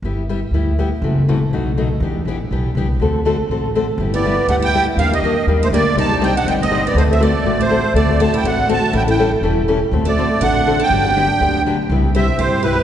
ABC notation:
X:1
M:4/4
L:1/8
Q:"Swing" 1/4=243
K:G
V:1 name="Accordion"
z8 | z8 | z8 | z8 |
z d3 f g2 z | =f _e3 z c d2 | a2 g f g _e2 d | c e d3 c3 |
d2 a g f2 a2 | g g2 z4 z | z d3 f3 g- | g6 z2 |
[K:C] z2 e2 c2 B2 |]
V:2 name="Steel-string acoustic guitar"
z8 | z8 | z8 | z8 |
z B,3 D E2 z | D _B,3 z A, B,2 | _E2 E D E C2 B, | A, C A,3 A,3 |
A,2 F E D2 F2 | E E2 z4 z | z A,3 D3 D- | D6 z2 |
[K:C] z2 c2 G2 G2 |]
V:3 name="Steel-string acoustic guitar"
[G,B,EG] z [G,B,EG] z [G,B,EG] z [G,B,EG] z | [C,E,A,EF] z [C,E,A,EF] z [B,,F,A,^DF] z [B,,F,A,DF] z | [E,B,DG] z [E,B,DG] z [E,B,DG] z [E,B,DG] z | [D,A,CFA] z [D,A,CFA] z [D,A,CFA] z [D,A,CFA] z |
[G,B,EG] [B,EG] [G,B,EG] z [G,B,EG] z [G,B,EG] z | [_E,G,_B,DG] [B,DG] [E,G,B,DG] z [E,G,B,DG] z [E,G,B,DG] z | [C,G,C_EGd] [CEGd] [C,G,CEGd] z [C,G,CEGd] z [C,G,CEGd] z | [D,A,CFA] [CFA] [D,A,CFA] z [D,A,CFA] z [D,A,CFA] z |
[D,A,CFA] [CFA] [D,A,CFA] z [D,A,CFA] z [D,A,CFA] z | [E,G,^CEA] [CEA] [E,G,CEA] z [E,G,CEA] z [E,G,CEA] z | [D,A,CFA] [CFA] [D,A,CFA] z [D,A,CFA] z [D,A,CFA] z | [D,F,B,DG] [B,DG] [D,F,B,DG] z [D,F,B,DG] z [D,F,B,DG] z |
[K:C] [C,G,B,EG] z [C,G,B,EG] z [C,G,B,EG] z [C,G,B,EG] z |]
V:4 name="Upright bass" clef=bass
G,,,4 D,,4 | F,,,4 B,,,4 | E,,2 A,,,2 B,,,2 C,,2 | D,,4 A,,,4 |
G,,,4 D,,4 | _E,,2 =F,,2 E,,2 D,,2 | C,,4 G,,,4 | D,,4 A,,,4 |
D,,4 A,,,4 | A,,,4 E,,,4 | D,,4 A,,,4 | G,,,4 D,,4 |
[K:C] C,,4 G,,4 |]